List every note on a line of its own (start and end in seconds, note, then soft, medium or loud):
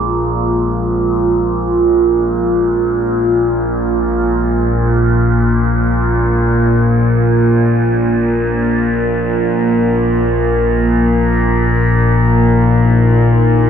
0.00 13.70 A#1 medium
0.00 13.70 A#2 medium
0.00 13.70 G#3 medium
0.00 13.70 A#3 medium
0.00 11.49 F4 medium
0.00 13.70 G#4 medium
0.00 13.70 A#4 medium
12.25 13.70 D#4 medium